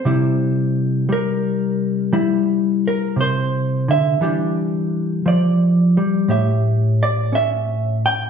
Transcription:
0.00 1.10 C5 medium
0.05 3.15 C3 medium
0.05 1.08 G3 soft
0.05 2.13 E4 soft
1.09 2.11 G3 medium
1.09 2.15 A#4 medium
2.13 3.88 G3 medium
2.13 4.17 E4 medium
2.88 3.19 A#4 medium
3.16 3.88 C3 medium
3.21 3.90 C5 medium
3.88 4.21 D3 medium
3.88 5.26 E5 medium
4.21 5.25 E3 medium
4.21 5.96 G3 soft
4.21 6.26 D4 soft
4.21 6.26 G4 soft
5.26 5.97 F3 medium
5.26 6.30 D5 medium
5.97 6.29 G3 medium
6.28 8.30 A2 medium
6.28 8.30 G4 soft
6.28 7.34 E5 soft
7.03 7.34 D5 medium
7.33 8.30 C#4 medium
7.33 8.05 E5 medium
8.06 8.30 G5 medium

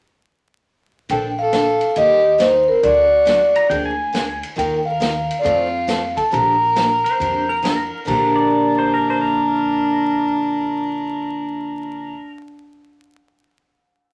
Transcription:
1.09 1.79 A#1 medium
1.09 1.31 D3 medium
1.09 1.31 F3 medium
1.09 1.32 A#3 medium
1.09 1.31 D4 medium
1.09 1.32 A4 medium
1.09 1.23 A4 medium
1.09 1.23 G5 medium
1.09 ride medium
1.39 1.93 A4 medium
1.39 1.98 F5 loud
1.52 1.64 D3 medium
1.52 1.64 F3 medium
1.52 1.65 A#3 medium
1.52 1.65 D4 medium
1.52 1.65 A4 medium
1.52 snare medium
1.52 hi-hat pedal soft
1.52 ride medium
1.81 ride soft
1.96 2.66 D#2 medium
1.96 2.18 D#3 medium
1.96 2.18 G3 medium
1.96 2.18 A#3 medium
1.96 2.18 D#4 medium
1.96 2.19 G4 medium
1.96 2.38 G4 medium
1.96 2.41 D#5 medium
1.96 ride medium
2.38 2.50 D#3 medium
2.38 2.51 G3 medium
2.38 2.51 A#3 medium
2.38 2.51 D#4 medium
2.38 2.66 D#4 medium
2.38 2.51 G4 medium
2.38 2.65 C5 medium
2.38 snare medium
2.38 hi-hat pedal medium
2.38 ride medium
2.68 2.83 C4 medium
2.68 2.84 A#4 medium
2.83 3.53 D2 medium
2.83 3.05 D3 medium
2.83 3.05 F#3 medium
2.83 3.05 A3 medium
2.83 3.05 D4 medium
2.83 3.05 F#4 medium
2.83 3.67 F#4 medium
2.83 3.66 D5 medium
2.83 ride medium
3.25 3.38 D3 medium
3.25 3.38 F#3 medium
3.25 3.38 A3 medium
3.25 3.38 D4 medium
3.25 3.39 F#4 medium
3.25 snare medium
3.25 hi-hat pedal medium
3.25 ride medium
3.55 3.69 A#5 medium
3.55 ride soft
3.70 4.40 D2 medium
3.70 3.92 D3 medium
3.70 3.92 F3 medium
3.70 3.93 A#3 medium
3.70 3.93 D4 medium
3.70 3.93 G#4 medium
3.70 3.84 G5 medium
3.70 ride medium
3.86 4.48 G#5 loud
4.13 4.25 D3 medium
4.13 4.25 F3 medium
4.13 4.25 A#3 medium
4.13 4.25 D4 medium
4.13 4.26 G#4 medium
4.13 snare medium
4.13 hi-hat pedal medium
4.13 ride medium
4.43 ride soft
4.56 5.27 D#2 medium
4.56 4.79 D#3 medium
4.56 4.79 A#3 medium
4.56 4.79 D#4 medium
4.56 4.79 F4 medium
4.56 4.79 A#4 medium
4.56 4.71 A#4 medium
4.56 4.71 G5 medium
4.56 ride medium
4.85 5.36 A#4 medium
4.85 5.36 F5 medium
5.00 5.12 D#3 medium
5.00 5.12 A#3 medium
5.00 5.13 D#4 medium
5.00 5.13 F4 medium
5.00 5.13 A#4 medium
5.00 snare medium
5.00 hi-hat pedal medium
5.00 ride medium
5.31 ride medium
5.39 5.43 F4 medium
5.39 5.44 D5 medium
5.43 6.15 F2 medium
5.43 5.66 F3 medium
5.43 5.66 A3 medium
5.43 5.67 C4 medium
5.43 6.13 F4 medium
5.43 5.67 F4 medium
5.43 5.67 A4 medium
5.43 6.13 F5 medium
5.43 ride medium
5.87 6.00 F3 medium
5.87 6.00 A3 medium
5.87 6.00 C4 medium
5.87 6.00 F4 medium
5.87 6.00 A4 medium
5.87 snare medium
5.87 hi-hat pedal medium
5.87 ride medium
6.16 6.23 A4 medium
6.16 6.24 A5 loud
6.16 kick soft
6.16 ride soft
6.31 7.03 A#1 medium
6.31 6.54 D3 medium
6.31 6.54 F3 medium
6.31 6.54 A#3 medium
6.31 6.54 D4 medium
6.31 6.55 G4 medium
6.31 7.87 A#4 medium
6.31 7.88 A#5 medium
6.31 ride soft
6.76 6.88 D3 medium
6.76 6.88 F3 medium
6.76 6.88 A#3 medium
6.76 6.88 D4 medium
6.76 6.88 G4 medium
6.76 snare medium
6.76 hi-hat pedal soft
6.76 ride medium
7.04 7.47 C5 medium
7.04 ride soft
7.20 7.90 F2 medium
7.20 7.42 D3 medium
7.20 7.42 F3 medium
7.20 7.42 A#3 medium
7.20 7.42 D4 medium
7.20 7.43 G4 medium
7.20 ride soft
7.49 7.63 A#4 medium
7.62 7.75 D3 medium
7.62 7.75 F3 medium
7.62 7.75 A#3 medium
7.62 7.75 D4 medium
7.62 7.75 G4 medium
7.62 7.99 A#4 medium
7.62 snare medium
7.62 hi-hat pedal medium
7.62 ride medium
8.05 12.13 A#1 medium
8.05 12.14 A#2 medium
8.05 12.15 D3 medium
8.05 12.16 F3 medium
8.05 12.17 A#3 medium
8.05 12.11 D4 medium
8.05 12.17 D4 medium
8.05 12.18 G4 medium
8.05 12.12 A#5 medium
8.05 kick medium
8.05 crash medium
8.36 8.78 D5 medium
8.79 8.93 C5 medium
8.94 9.08 A#4 medium
9.10 9.21 C5 medium
9.21 12.31 A#4 medium

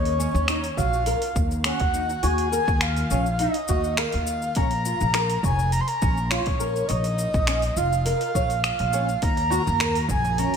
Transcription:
0.00 0.25 D#2 medium
0.00 0.79 C#5 loud
0.05 open hi-hat soft
0.19 0.33 C#4 medium
0.19 shaker medium
0.34 0.69 D#2 loud
0.34 shaker soft
0.48 0.63 D#4 medium
0.48 finger snap loud
0.48 open hi-hat medium
0.48 shaker soft
0.64 open hi-hat soft
0.64 shaker soft
0.77 1.12 A#1 loud
0.77 1.05 F#4 medium
0.77 1.36 F5 loud
0.77 kick medium
0.77 mid tom medium
0.77 shaker medium
0.93 shaker soft
1.06 1.21 A#4 medium
1.06 open hi-hat medium
1.06 shaker soft
1.22 open hi-hat soft
1.36 1.70 D#2 loud
1.36 kick loud
1.36 shaker medium
1.51 shaker soft
1.64 1.79 C#4 medium
1.64 2.25 F#5 medium
1.64 finger snap loud
1.64 open hi-hat medium
1.64 shaker soft
1.80 2.14 D#2 medium
1.80 kick loud
1.80 open hi-hat soft
1.94 2.09 D#4 medium
1.94 shaker medium
2.10 shaker soft
2.23 2.58 D#2 medium
2.23 2.51 F#4 medium
2.23 2.84 G#5 loud
2.23 open hi-hat medium
2.23 shaker soft
2.38 open hi-hat soft
2.52 2.67 A#4 medium
2.52 shaker medium
2.68 3.02 D#2 loud
2.68 kick loud
2.68 shaker soft
2.81 3.42 F5 loud
2.81 finger snap loud
2.81 open hi-hat medium
2.81 shaker soft
2.96 open hi-hat soft
2.96 shaker soft
3.10 3.45 A#1 loud
3.10 3.25 C#4 medium
3.10 shaker medium
3.26 shaker soft
3.39 3.54 D#4 medium
3.39 4.00 D#5 medium
3.39 open hi-hat medium
3.39 shaker soft
3.54 open hi-hat soft
3.68 4.04 D#2 loud
3.68 3.96 F#4 medium
3.68 kick medium
3.68 shaker medium
3.84 shaker soft
3.97 4.12 A#4 medium
3.97 4.58 F5 loud
3.97 finger snap loud
3.97 open hi-hat medium
3.97 shaker soft
4.12 4.48 D#2 medium
4.12 open hi-hat soft
4.27 shaker medium
4.42 shaker soft
4.55 4.91 A#1 loud
4.55 4.71 C#4 medium
4.55 5.43 A#5 loud
4.55 kick loud
4.55 open hi-hat medium
4.55 shaker soft
4.71 open hi-hat soft
4.85 5.00 F4 medium
4.85 shaker medium
5.01 5.35 A#1 loud
5.01 shaker soft
5.14 5.42 A#4 medium
5.14 finger snap loud
5.14 open hi-hat medium
5.14 shaker soft
5.29 open hi-hat soft
5.29 shaker soft
5.43 5.78 F1 medium
5.43 5.58 C#5 medium
5.43 5.71 G#5 medium
5.43 kick medium
5.43 mid tom medium
5.43 shaker medium
5.59 shaker soft
5.72 5.82 A#5 loud
5.72 open hi-hat medium
5.72 shaker soft
5.81 5.89 C6 medium
5.88 6.30 A#5 loud
5.88 open hi-hat soft
6.01 6.37 A#1 loud
6.01 6.16 C#4 medium
6.01 kick loud
6.01 shaker medium
6.17 shaker soft
6.31 6.45 F4 medium
6.31 6.90 C#5 medium
6.31 finger snap loud
6.31 open hi-hat medium
6.31 shaker soft
6.46 6.81 A#1 medium
6.46 kick loud
6.46 open hi-hat soft
6.60 6.88 A#4 medium
6.60 shaker medium
6.76 shaker soft
6.88 7.24 A#1 loud
6.88 7.03 C#5 medium
6.88 7.79 D#5 loud
6.88 open hi-hat medium
6.88 shaker soft
7.04 open hi-hat soft
7.04 shaker soft
7.18 shaker medium
7.34 7.68 A#1 loud
7.34 kick loud
7.34 shaker soft
7.47 7.62 C#4 medium
7.47 finger snap loud
7.47 open hi-hat medium
7.47 shaker soft
7.62 open hi-hat soft
7.62 shaker soft
7.76 8.11 F1 medium
7.76 7.91 F4 medium
7.76 8.05 F5 loud
7.76 shaker medium
7.93 shaker soft
8.05 8.33 A#4 medium
8.05 8.60 F5 loud
8.05 open hi-hat medium
8.05 shaker soft
8.21 open hi-hat soft
8.35 8.70 A#1 medium
8.35 8.49 C#5 medium
8.35 kick medium
8.35 shaker medium
8.50 open hi-hat soft
8.50 shaker soft
8.64 9.18 F5 loud
8.64 finger snap loud
8.64 open hi-hat medium
8.64 shaker soft
8.79 9.14 A#1 medium
8.79 open hi-hat soft
8.93 9.08 C#4 medium
8.93 shaker medium
9.09 shaker soft
9.22 9.57 D#2 loud
9.22 10.57 D#3 medium
9.22 10.57 A#3 medium
9.22 9.37 D#4 medium
9.22 10.57 F#4 medium
9.22 10.57 F5 medium
9.22 10.06 A#5 loud
9.22 kick loud
9.22 open hi-hat medium
9.22 shaker soft
9.37 open hi-hat soft
9.37 darbuka ka medium
9.50 9.60 F#4 loud
9.50 darbuka tek medium
9.50 shaker medium
9.66 10.01 D#2 medium
9.66 darbuka ka soft
9.66 darbuka dum medium
9.66 shaker soft
9.80 9.95 A#4 medium
9.80 finger snap loud
9.80 open hi-hat medium
9.80 shaker soft
9.95 open hi-hat soft
9.95 shaker soft
10.09 10.44 A#1 medium
10.09 10.40 G#5 loud
10.09 kick medium
10.09 mid tom medium
10.09 darbuka dum medium
10.09 shaker medium
10.25 darbuka ka medium
10.25 shaker soft
10.38 10.53 C#4 medium
10.38 10.57 A#5 loud
10.38 open hi-hat medium
10.38 shaker soft

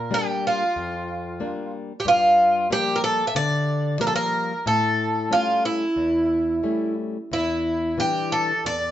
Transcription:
0.00 0.10 A#2 medium
0.00 0.15 A#4 medium
0.11 0.63 G3 soft
0.11 0.63 A#3 soft
0.11 0.64 D4 soft
0.11 0.46 G4 medium
0.47 1.71 F4 medium
0.76 1.39 F2 medium
1.40 1.92 G3 soft
1.40 1.92 A#3 soft
1.40 1.92 D4 soft
2.00 2.06 G4 medium
2.05 2.67 G2 medium
2.05 2.67 F4 medium
2.70 3.22 F3 soft
2.70 3.22 G3 soft
2.70 3.22 A#3 soft
2.70 2.97 G4 medium
2.96 3.02 A#4 medium
3.04 3.27 A4 medium
3.27 3.34 E5 medium
3.35 3.98 D3 medium
3.35 4.01 D5 medium
3.99 4.52 F3 soft
3.99 4.52 G3 soft
3.99 4.52 A#3 soft
3.99 4.06 A#4 medium
4.07 4.13 A4 medium
4.16 4.67 A#4 medium
4.66 5.29 A2 medium
4.66 5.34 A4 medium
5.30 5.83 G3 soft
5.30 5.84 A3 soft
5.30 5.84 C#4 soft
5.30 5.65 F4 medium
5.65 6.93 E4 medium
5.96 6.61 E2 medium
6.63 7.17 G3 soft
6.63 7.17 A3 soft
6.63 7.17 C#4 soft
7.32 7.96 E2 medium
7.32 7.99 E4 medium
7.98 8.51 E3 soft
7.98 8.51 G3 soft
7.98 8.51 D4 soft
7.98 8.33 G4 medium
8.32 8.66 A4 medium
8.65 8.91 E2 medium
8.65 8.91 D5 medium

